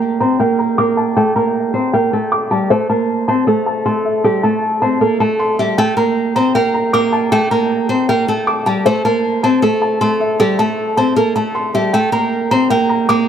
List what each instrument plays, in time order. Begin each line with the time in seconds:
Already playing: nylon-string guitar A#3 A#4, felt piano G5 A#5
0.20 nylon-string guitar C4 C5, felt piano A#5
0.40 nylon-string guitar A#3 A#4, felt piano G5
0.59 felt piano A#5
0.78 nylon-string guitar A#3 A#4, felt piano D6
0.97 felt piano A5
1.17 nylon-string guitar A3 A4, felt piano G5
1.36 nylon-string guitar A#3 A#4, felt piano A#5
1.74 nylon-string guitar C4 C5
1.93 nylon-string guitar A#3 A#4, felt piano G5
2.13 nylon-string guitar A3 A4
2.32 felt piano D6
2.51 nylon-string guitar G3 G4, felt piano A5
2.70 nylon-string guitar A3 A4, felt piano C5
2.90 nylon-string guitar A#3 A#4, felt piano A5
3.28 nylon-string guitar C4 C5, felt piano A5
3.47 nylon-string guitar A3 A4, felt piano A4
3.66 felt piano A5
3.86 nylon-string guitar A3 A4, felt piano C6
4.05 felt piano E5
4.24 nylon-string guitar G3 G4, felt piano A4
4.43 nylon-string guitar A3 A4, felt piano A5
4.82 nylon-string guitar C4 C5, felt piano A5
5.01 nylon-string guitar A#3 A#4, felt piano A4
5.20 nylon-string guitar A3 A4, felt piano A5
5.39 felt piano C6
5.59 nylon-string guitar G3 G4, felt piano E5
5.78 nylon-string guitar A3 A4, felt piano G5
5.97 nylon-string guitar A#3 A#4, felt piano A#5
6.36 nylon-string guitar C4 C5, felt piano A#5
6.55 nylon-string guitar A#3 A#4, felt piano G5
6.74 felt piano A#5
6.93 nylon-string guitar A#3 A#4, felt piano D6
7.13 felt piano A5
7.32 nylon-string guitar A3 A4, felt piano G5
7.51 nylon-string guitar A#3 A#4, felt piano A#5
7.89 nylon-string guitar C4 C5
8.09 nylon-string guitar A#3 A#4, felt piano G5
8.28 nylon-string guitar A3 A4
8.47 felt piano D6
8.66 nylon-string guitar G3 G4, felt piano A5
8.86 nylon-string guitar A3 A4, felt piano C5
9.05 nylon-string guitar A#3 A#4, felt piano A5
9.43 nylon-string guitar C4 C5, felt piano A5
9.62 nylon-string guitar A3 A4, felt piano A4
9.82 felt piano A5
10.01 nylon-string guitar A3 A4, felt piano C6
10.20 felt piano E5
10.40 nylon-string guitar G3 G4, felt piano A4
10.59 nylon-string guitar A3 A4, felt piano A5
10.97 nylon-string guitar C4 C5, felt piano A5
11.16 nylon-string guitar A#3 A#4, felt piano A4
11.36 nylon-string guitar A3 A4, felt piano A5
11.55 felt piano C6
11.74 nylon-string guitar G3 G4, felt piano E5
11.93 nylon-string guitar A3 A4, felt piano G5
12.12 nylon-string guitar A#3 A#4, felt piano A#5
12.51 nylon-string guitar C4 C5, felt piano A#5
12.70 nylon-string guitar A#3 A#4, felt piano G5
12.90 felt piano A#5
13.09 nylon-string guitar A#3 A#4, felt piano D6